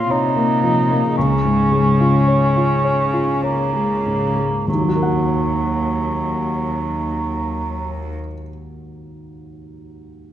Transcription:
Already playing: grand piano A#2 F3 A#3 F4 C#5, cor anglais F4
0.10 cello section C3, cor anglais D#4, grand piano C#5
0.36 grand piano A#3
0.63 grand piano F3
0.91 grand piano A#3
1.16 grand piano C#2, cello section C#3, cor anglais C#4
1.45 grand piano G#2
1.72 grand piano G#3
2.00 grand piano F4
2.28 grand piano C#5
2.57 grand piano F4
2.84 grand piano C#5
3.13 grand piano F4
3.43 cor anglais A#3, grand piano C#5
3.73 grand piano G#3
4.06 grand piano G#2
4.36 grand piano G#3
4.68 grand piano D#2, cello section D#2, cor anglais F#3
4.74 grand piano D#3
4.81 grand piano F#3
4.88 grand piano F#4
4.96 grand piano A#4
5.03 grand piano F#5

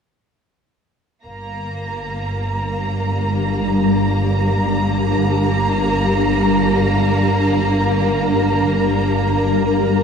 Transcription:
1.25 double bass section G1, ambient pad G3, violin section A#3 A#5
1.76 ambient pad G4
2.24 ambient pad D4
3.90 ambient pad A#4
8.25 ambient pad G4

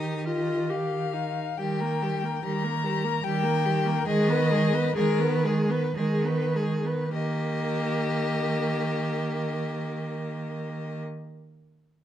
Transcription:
Already playing: cello D#3, viola D#4, violin G4 D#6
0.26 viola F4, violin D#5
0.70 viola G4, violin F5
1.13 viola D#4
1.58 cello D#3, viola G3, violin G4 G5
1.80 viola A#3, violin A#4
2.02 viola G3, violin G4
2.23 viola A#3, violin A#4
2.43 cello D#3, viola G3, violin G4 A#5
2.64 viola A#3, violin A#4
2.84 viola G3, violin G4
3.04 viola A#3, violin A#4
3.23 cello D#3, viola G3, violin G4 G5
3.43 viola A#3, violin A#4
3.65 viola G3, violin G4
3.85 viola A#3, violin A#4
4.07 cello D#3, viola G#3, violin G#4 D#5
4.28 viola B3, violin B4
4.51 viola G#3, violin G#4
4.73 viola B3, violin B4
4.95 cello D#3, viola G#3, violin G#4 A#4
5.19 viola B3, violin B4
5.44 viola G#3, violin G#4
5.69 viola B3, violin B4
5.96 cello D#3, viola G#3, violin G#4
6.24 viola B3, violin B4
6.55 viola G#3, violin G#4
6.84 viola B3, violin B4
7.11 cello D#3, viola A#3, violin G4 D#5

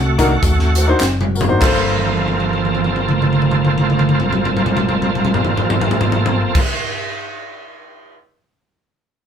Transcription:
Already playing: fingered electric bass C2, grand piano D3, tonewheel organ A3 F#4
0.18 grand piano A#3 D4 D#4 F#4 A#4, kick, closed hi-hat, tambourine
0.43 fingered electric bass D#2, kick, closed hi-hat, tambourine
0.59 snare
0.75 grand piano F#4 C5, closed hi-hat, tambourine
0.87 grand piano A#3 D4 D#4 F#4 C5
1.00 fingered electric bass F#1, snare, clap, tambourine
1.21 mid tom
1.35 grand piano F#4 A#4, tambourine
1.41 floor tom
1.48 grand piano A#3 D4 D#4 F#4 C5
1.58 fingered electric bass G1, grand piano G2 A#3 F4, tonewheel organ F3 A#3 C4 A4, kick, clap, crash
1.63 grand piano A4 C5
1.98 high tom
2.08 high tom
2.17 high tom
2.28 high tom
2.40 high tom
2.53 high tom
2.65 high tom
2.75 high tom
2.84 high tom
2.96 high tom
3.08 mid tom
3.22 mid tom
3.33 mid tom
3.42 mid tom
3.51 mid tom
3.65 mid tom
3.78 mid tom
3.90 mid tom
3.99 mid tom
4.09 mid tom
4.20 mid tom
4.33 mid tom
4.45 mid tom
4.57 mid tom
4.66 mid tom
4.77 mid tom
4.89 mid tom
5.02 mid tom
5.15 mid tom
5.25 mid tom
5.34 floor tom
5.45 floor tom
5.57 floor tom
5.70 floor tom
5.81 floor tom
5.91 floor tom
6.01 floor tom
6.12 floor tom
6.26 floor tom
6.55 kick, crash

